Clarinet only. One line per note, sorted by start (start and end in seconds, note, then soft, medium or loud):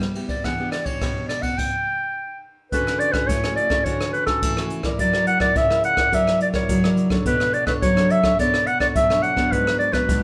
0.29 0.46 D5 medium
0.45 0.71 F#5 medium
0.72 0.87 D5 medium
0.86 1.28 C#5 medium
1.29 1.44 D5 medium
1.42 1.59 F#5 medium
1.58 2.43 G5 medium
2.72 3.01 B4 medium
2.99 3.14 D5 loud
3.12 3.29 B4 medium
3.27 3.55 C#5 loud
3.56 3.86 D5 medium
3.85 4.12 C#5 medium
4.13 4.26 B4 medium
4.26 4.67 A4 medium
5.00 5.26 D5 medium
5.27 5.40 F#5 loud
5.41 5.59 D5 loud
5.57 5.84 E5 loud
5.85 6.16 F#5 loud
6.14 6.42 E5 medium
6.42 6.48 D5 medium
6.55 6.95 C#5 medium
7.27 7.56 B4 medium
7.54 7.66 D5 medium
7.67 7.74 B4 medium
7.82 8.13 C#5 loud
8.11 8.39 E5 medium
8.40 8.68 D5 medium
8.67 8.80 F#5 loud
8.81 8.87 D5 medium
8.96 9.24 E5 medium
9.23 9.53 F#5 medium
9.52 9.78 B4 medium
9.79 9.94 D5 medium
9.93 10.22 B4 medium